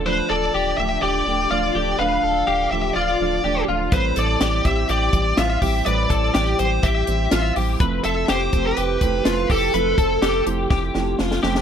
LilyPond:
<<
  \new Staff \with { instrumentName = "Lead electric guitar" } { \time 4/4 \key d \dorian \tempo 4 = 124 c''8 d''4 e''8 d''4 d''4 | f''4. e''8 d''4. r8 | c''8 d''4 e''8 d''4 e''4 | d''4. c''8 e''4. r8 |
r8 e''8 c''8. b'4.~ b'16 a'8~ | a'4. r2 r8 | }
  \new Staff \with { instrumentName = "Clean electric guitar" } { \time 4/4 \key d \dorian b'8 a'8 g'4 g'4 f'8 g'8 | b'8 a'8 g'4 f'4 g'8 f'8 | b'8 a'8 g'4 g'4 f'8 g'8 | b'8 a'8 g'4 g'4 f'8 g'8 |
b'8 a'8 g'4 g'4 f'8 g'8 | b'8 a'8 g'4 g'4 f'8 g'8 | }
  \new Staff \with { instrumentName = "Steel-string acoustic guitar" } { \time 4/4 \key d \dorian <d f a d'>4. <d f a d'>4 <d f a d'>8 <d f a d'>8 <d f a d'>8 | <d f a d'>4. <d f a d'>4 <d f a d'>8 <d f a d'>8 <d f a d'>8 | <a, e g c' e'>4. <e g c' e'>4 <e g c' e'>8 <e g c' e'>8 <e g c' e'>8 | <a, e g c' e'>4. <e g c' e'>4 <e g c' e'>8 <e g c' e'>8 <e g c' e'>8 |
<f a c' e'>4. <f a c' e'>4 <f a c' e'>8 <f a c' e'>8 <f a c' e'>8 | <f a c' e'>4. <f a c' e'>4 <f a c' e'>8 <f a c' e'>8 <f a c' e'>8 | }
  \new Staff \with { instrumentName = "Sub bass" } { \clef bass \time 4/4 \key d \dorian d,,8 d,,8 d,,8 d,,8 d,,8 d,,8 d,,8 d,,8 | d,,8 d,,8 d,,8 d,,8 d,,8 d,,8 d,,8 d,,8 | a,,8 a,,8 a,,8 a,,8 a,,8 a,,8 a,,8 a,,8 | a,,8 a,,8 a,,8 a,,8 a,,8 a,,8 a,,8 a,,8 |
f,,8 f,,8 f,,8 f,,8 f,,8 f,,8 f,,8 f,,8 | f,,8 f,,8 f,,8 f,,8 f,,8 f,,8 f,,8 f,,8 | }
  \new DrumStaff \with { instrumentName = "Drums" } \drummode { \time 4/4 r4 r4 r4 r4 | r4 r4 r4 r4 | <hh bd>8 hh8 <hh sn>8 <hh bd>8 hh8 <hh bd>8 <hh sn>8 <hho bd>8 | hh8 <hh bd>8 <hh sn>8 hh8 <hh bd>8 hh8 <hh sn>8 hho8 |
<hh bd>8 hh8 <hh sn>8 <hh bd>8 hh8 <hh bd>8 <hh sn>8 <hho bd>8 | hh8 <hh bd>8 <hh sn>8 hh8 <bd sn>8 sn8 sn16 sn16 sn16 sn16 | }
>>